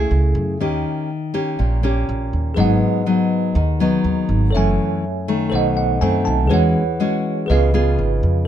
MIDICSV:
0, 0, Header, 1, 4, 480
1, 0, Start_track
1, 0, Tempo, 492126
1, 588, Time_signature, 4, 2, 24, 8
1, 8268, End_track
2, 0, Start_track
2, 0, Title_t, "Tine electric piano"
2, 0, Program_c, 0, 4
2, 2482, Note_on_c, 0, 68, 50
2, 2499, Note_on_c, 0, 71, 45
2, 2518, Note_on_c, 0, 75, 49
2, 2538, Note_on_c, 0, 78, 58
2, 2673, Control_c, 0, 64, 127
2, 4376, Note_off_c, 0, 68, 0
2, 4385, Note_off_c, 0, 71, 0
2, 4394, Note_on_c, 0, 69, 51
2, 4395, Note_off_c, 0, 75, 0
2, 4405, Note_off_c, 0, 78, 0
2, 4413, Note_on_c, 0, 73, 46
2, 4433, Note_on_c, 0, 76, 47
2, 4442, Control_c, 0, 64, 0
2, 4457, Note_on_c, 0, 80, 60
2, 4596, Control_c, 0, 64, 127
2, 5349, Note_off_c, 0, 69, 0
2, 5361, Note_off_c, 0, 73, 0
2, 5361, Note_on_c, 0, 69, 55
2, 5371, Note_off_c, 0, 76, 0
2, 5380, Note_on_c, 0, 72, 55
2, 5383, Note_off_c, 0, 80, 0
2, 5399, Note_on_c, 0, 75, 52
2, 5401, Control_c, 0, 64, 0
2, 5416, Note_on_c, 0, 78, 62
2, 5590, Control_c, 0, 64, 127
2, 5614, Note_off_c, 0, 78, 0
2, 5626, Note_on_c, 0, 78, 58
2, 5850, Note_off_c, 0, 78, 0
2, 5865, Note_on_c, 0, 80, 53
2, 6089, Note_off_c, 0, 80, 0
2, 6097, Note_on_c, 0, 81, 52
2, 6315, Note_off_c, 0, 69, 0
2, 6315, Note_on_c, 0, 68, 54
2, 6325, Note_off_c, 0, 72, 0
2, 6325, Note_off_c, 0, 81, 0
2, 6334, Note_off_c, 0, 75, 0
2, 6334, Note_on_c, 0, 71, 49
2, 6353, Note_on_c, 0, 73, 50
2, 6362, Control_c, 0, 64, 0
2, 6374, Note_on_c, 0, 78, 57
2, 6507, Control_c, 0, 64, 127
2, 7266, Note_off_c, 0, 68, 0
2, 7278, Note_on_c, 0, 68, 50
2, 7281, Note_off_c, 0, 71, 0
2, 7291, Note_off_c, 0, 73, 0
2, 7295, Note_on_c, 0, 71, 50
2, 7302, Note_off_c, 0, 78, 0
2, 7314, Note_on_c, 0, 75, 57
2, 7320, Control_c, 0, 64, 0
2, 7333, Note_on_c, 0, 77, 64
2, 7485, Control_c, 0, 64, 127
2, 8233, Note_off_c, 0, 68, 0
2, 8242, Note_off_c, 0, 71, 0
2, 8252, Note_off_c, 0, 75, 0
2, 8261, Note_off_c, 0, 77, 0
2, 8268, End_track
3, 0, Start_track
3, 0, Title_t, "Nylon-string guitar"
3, 0, Program_c, 1, 24
3, 0, Note_on_c, 1, 49, 51
3, 0, Note_on_c, 1, 57, 59
3, 0, Note_on_c, 1, 64, 56
3, 0, Note_on_c, 1, 68, 74
3, 550, Note_off_c, 1, 57, 0
3, 552, Note_off_c, 1, 64, 0
3, 554, Note_off_c, 1, 68, 0
3, 565, Note_off_c, 1, 49, 0
3, 589, Note_on_c, 1, 51, 55
3, 591, Note_on_c, 1, 58, 46
3, 596, Note_on_c, 1, 61, 53
3, 597, Note_on_c, 1, 67, 54
3, 1066, Note_off_c, 1, 58, 0
3, 1067, Note_off_c, 1, 61, 0
3, 1070, Note_off_c, 1, 67, 0
3, 1305, Note_on_c, 1, 58, 56
3, 1309, Note_on_c, 1, 61, 62
3, 1312, Note_on_c, 1, 67, 63
3, 1526, Note_off_c, 1, 51, 0
3, 1550, Note_on_c, 1, 46, 52
3, 1748, Note_off_c, 1, 58, 0
3, 1750, Note_off_c, 1, 61, 0
3, 1751, Note_off_c, 1, 67, 0
3, 1787, Note_on_c, 1, 58, 64
3, 1794, Note_on_c, 1, 61, 60
3, 1802, Note_on_c, 1, 67, 55
3, 2469, Note_off_c, 1, 58, 0
3, 2473, Note_off_c, 1, 61, 0
3, 2474, Note_off_c, 1, 67, 0
3, 2485, Note_off_c, 1, 46, 0
3, 2502, Note_on_c, 1, 44, 51
3, 2502, Note_on_c, 1, 54, 50
3, 2506, Note_on_c, 1, 59, 54
3, 2513, Note_on_c, 1, 63, 55
3, 2946, Note_off_c, 1, 54, 0
3, 2949, Note_off_c, 1, 59, 0
3, 2951, Note_off_c, 1, 63, 0
3, 2988, Note_on_c, 1, 54, 49
3, 2992, Note_on_c, 1, 59, 52
3, 2993, Note_on_c, 1, 63, 54
3, 3441, Note_off_c, 1, 44, 0
3, 3465, Note_off_c, 1, 54, 0
3, 3466, Note_off_c, 1, 59, 0
3, 3468, Note_off_c, 1, 63, 0
3, 3471, Note_on_c, 1, 51, 51
3, 3709, Note_on_c, 1, 54, 57
3, 3716, Note_on_c, 1, 59, 53
3, 3720, Note_on_c, 1, 63, 62
3, 4390, Note_off_c, 1, 54, 0
3, 4393, Note_off_c, 1, 59, 0
3, 4396, Note_off_c, 1, 63, 0
3, 4405, Note_off_c, 1, 51, 0
3, 4434, Note_on_c, 1, 42, 53
3, 4435, Note_on_c, 1, 52, 51
3, 4439, Note_on_c, 1, 57, 49
3, 4443, Note_on_c, 1, 61, 53
3, 4908, Note_off_c, 1, 52, 0
3, 4911, Note_off_c, 1, 57, 0
3, 4912, Note_off_c, 1, 61, 0
3, 5153, Note_on_c, 1, 51, 65
3, 5157, Note_on_c, 1, 57, 66
3, 5367, Note_off_c, 1, 42, 0
3, 5386, Note_on_c, 1, 47, 51
3, 5832, Note_off_c, 1, 51, 0
3, 5833, Note_off_c, 1, 57, 0
3, 5866, Note_on_c, 1, 51, 52
3, 5870, Note_on_c, 1, 57, 57
3, 5874, Note_on_c, 1, 60, 55
3, 6323, Note_off_c, 1, 47, 0
3, 6328, Note_off_c, 1, 51, 0
3, 6329, Note_off_c, 1, 57, 0
3, 6332, Note_off_c, 1, 60, 0
3, 6340, Note_on_c, 1, 52, 55
3, 6340, Note_on_c, 1, 56, 56
3, 6346, Note_on_c, 1, 61, 55
3, 6347, Note_on_c, 1, 66, 59
3, 6653, Note_off_c, 1, 56, 0
3, 6654, Note_off_c, 1, 61, 0
3, 6657, Note_off_c, 1, 66, 0
3, 6825, Note_on_c, 1, 56, 53
3, 6831, Note_on_c, 1, 61, 54
3, 6836, Note_on_c, 1, 66, 57
3, 7280, Note_off_c, 1, 52, 0
3, 7287, Note_off_c, 1, 56, 0
3, 7290, Note_off_c, 1, 61, 0
3, 7293, Note_off_c, 1, 66, 0
3, 7313, Note_on_c, 1, 49, 53
3, 7317, Note_on_c, 1, 59, 50
3, 7318, Note_on_c, 1, 65, 51
3, 7323, Note_on_c, 1, 68, 57
3, 7512, Note_off_c, 1, 59, 0
3, 7515, Note_off_c, 1, 65, 0
3, 7517, Note_off_c, 1, 68, 0
3, 7547, Note_on_c, 1, 59, 62
3, 7551, Note_on_c, 1, 65, 58
3, 7557, Note_on_c, 1, 68, 70
3, 8229, Note_off_c, 1, 59, 0
3, 8231, Note_off_c, 1, 65, 0
3, 8233, Note_off_c, 1, 68, 0
3, 8247, Note_off_c, 1, 49, 0
3, 8268, End_track
4, 0, Start_track
4, 0, Title_t, "Upright bass"
4, 0, Program_c, 2, 32
4, 106, Note_on_c, 2, 37, 78
4, 330, Note_off_c, 2, 37, 0
4, 340, Note_on_c, 2, 42, 83
4, 584, Note_off_c, 2, 42, 0
4, 584, Note_on_c, 2, 39, 79
4, 809, Note_off_c, 2, 39, 0
4, 1553, Note_on_c, 2, 34, 76
4, 1997, Note_off_c, 2, 34, 0
4, 2037, Note_on_c, 2, 34, 78
4, 2256, Note_off_c, 2, 34, 0
4, 2274, Note_on_c, 2, 39, 69
4, 2509, Note_on_c, 2, 32, 83
4, 2523, Note_off_c, 2, 39, 0
4, 2732, Note_off_c, 2, 32, 0
4, 3464, Note_on_c, 2, 39, 87
4, 3912, Note_off_c, 2, 39, 0
4, 3944, Note_on_c, 2, 39, 77
4, 4169, Note_off_c, 2, 39, 0
4, 4182, Note_on_c, 2, 32, 78
4, 4419, Note_off_c, 2, 32, 0
4, 4419, Note_on_c, 2, 30, 86
4, 4646, Note_off_c, 2, 30, 0
4, 5385, Note_on_c, 2, 35, 80
4, 5833, Note_off_c, 2, 35, 0
4, 5868, Note_on_c, 2, 42, 79
4, 6091, Note_off_c, 2, 42, 0
4, 6114, Note_on_c, 2, 35, 82
4, 6353, Note_off_c, 2, 35, 0
4, 6353, Note_on_c, 2, 40, 81
4, 6574, Note_off_c, 2, 40, 0
4, 7310, Note_on_c, 2, 37, 77
4, 7756, Note_off_c, 2, 37, 0
4, 7790, Note_on_c, 2, 32, 72
4, 8012, Note_off_c, 2, 32, 0
4, 8028, Note_on_c, 2, 41, 76
4, 8268, Note_off_c, 2, 41, 0
4, 8268, End_track
0, 0, End_of_file